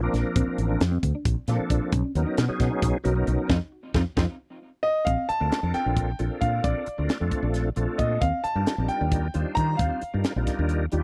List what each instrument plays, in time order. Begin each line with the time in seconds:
0.02 tonewheel organ F3 A#3 C4 D4 A#4
0.13 fretless electric bass A#1, clean electric guitar D4, snare, closed hi-hat
0.36 fretless electric bass A#1, clean electric guitar C4, kick, closed hi-hat
0.47 muted fretless electric bass stroke
0.58 fretless electric bass A1, closed hi-hat
0.70 clean electric guitar D4
0.81 fretless electric bass F2, snare, closed hi-hat
0.92 clean electric guitar C4
1.03 fretless electric bass D2, kick, closed hi-hat
1.15 clean electric guitar D4
1.25 fretless electric bass A#1, kick, closed hi-hat
1.48 fretless electric bass A#2, tonewheel organ F3 A#3 C4 D4 A4, clean electric guitar F4, snare, closed hi-hat
1.59 muted fretless electric bass stroke
1.70 fretless electric bass A#1, clean electric guitar D4, kick, closed hi-hat
1.92 fretless electric bass B1, clean electric guitar C#4, kick, closed hi-hat
2.15 fretless electric bass D#2, tonewheel organ F#3 B3 C#4 D#4 A#4, closed hi-hat
2.27 clean electric guitar D#4
2.37 fretless electric bass B2, snare, closed hi-hat
2.48 tonewheel organ F#3 B3 C#4 D#4 G#4, clean electric guitar C#4, muted fretless electric bass stroke
2.60 fretless electric bass B2, kick, snare, closed hi-hat
2.71 clean electric guitar D#4
2.82 fretless electric bass B1, kick, closed hi-hat
3.04 fretless electric bass B1, tonewheel organ F#3 B3 C#4 D#4 A#4, clean electric guitar F#4, closed hi-hat
3.15 tonewheel organ F#3 B3 C#4 D#4 A#4
3.27 fretless electric bass B1, clean electric guitar D#4, closed hi-hat
3.49 fretless electric bass F2, tonewheel organ C4 D#4 F4, clean electric guitar C4 D#4 F4, kick, snare
3.94 fretless electric bass F2, tonewheel organ C4 D#4 F4, clean electric guitar C4 D#4 F4, kick, snare
4.17 fretless electric bass F2, clean electric guitar C4 D#4 F4, tonewheel organ C4 D#4 F4, kick, snare
4.83 grand piano D#5
5.05 fretless electric bass A#1, clean electric guitar C4, grand piano F5, kick, closed hi-hat
5.29 grand piano A5, muted fretless electric bass stroke, closed hi-hat
5.40 fretless electric bass D2, tonewheel organ A3 C4 D4 F4 A#4, clean electric guitar D4
5.52 snare, closed hi-hat
5.63 fretless electric bass F2, tonewheel organ C4 D4 F4 A4 A#4, clean electric guitar C4
5.74 grand piano G5, muted fretless electric bass stroke, snare, closed hi-hat
5.86 fretless electric bass A#1, clean electric guitar D4
5.97 kick, closed hi-hat
6.19 fretless electric bass A#1, tonewheel organ C4 D4 F4 A4 A#4, clean electric guitar F4, closed hi-hat
6.41 fretless electric bass A#2, clean electric guitar D4, grand piano F5, kick, closed hi-hat
6.64 fretless electric bass A#1, clean electric guitar C4, grand piano D5, kick, closed hi-hat
6.86 muted fretless electric bass stroke, closed hi-hat
6.98 fretless electric bass D2, tonewheel organ A3 C4 D4 F4 A#4, clean electric guitar D4
7.09 snare, closed hi-hat
7.20 fretless electric bass F2, tonewheel organ A3 C4 D4 F4 A4, clean electric guitar C4
7.31 muted fretless electric bass stroke, kick, closed hi-hat
7.43 fretless electric bass A#1, clean electric guitar D4
7.54 snare, closed hi-hat
7.76 fretless electric bass A#1, tonewheel organ A3 C4 D4 F4 A4, clean electric guitar F4, closed hi-hat
7.98 fretless electric bass A#2, clean electric guitar D4, grand piano D#5, kick, closed hi-hat
8.21 fretless electric bass D#2, clean electric guitar C4, grand piano F5, kick, closed hi-hat
8.44 grand piano A5, muted fretless electric bass stroke, closed hi-hat
8.55 fretless electric bass G2, tonewheel organ G3 D4 D#4 F4 A#4, clean electric guitar D4
8.66 snare, closed hi-hat
8.78 fretless electric bass A#1, tonewheel organ G3 D4 D#4 F4 A#4, clean electric guitar C4
8.88 grand piano G5, closed hi-hat
9.01 fretless electric bass D#2, clean electric guitar D4
9.11 kick, closed hi-hat
9.34 fretless electric bass D#2, tonewheel organ G3 D4 D#4 F4 C5, clean electric guitar F4, closed hi-hat
9.55 fretless electric bass D#3, clean electric guitar D4, grand piano A#5, kick, closed hi-hat
9.77 fretless electric bass D#2, clean electric guitar C4, grand piano F5, kick, closed hi-hat
10.01 muted fretless electric bass stroke, closed hi-hat
10.14 fretless electric bass G2, tonewheel organ G3 D4 D#4 F4 A#4, clean electric guitar D4
10.24 snare, closed hi-hat
10.36 fretless electric bass A#1, tonewheel organ G3 D4 D#4 F4 A#4, clean electric guitar C4
10.47 kick, snare, closed hi-hat
10.59 fretless electric bass D#2, clean electric guitar D4
10.69 closed hi-hat
10.92 fretless electric bass D#2, tonewheel organ G3 D4 D#4 F4 G4, clean electric guitar F4, closed hi-hat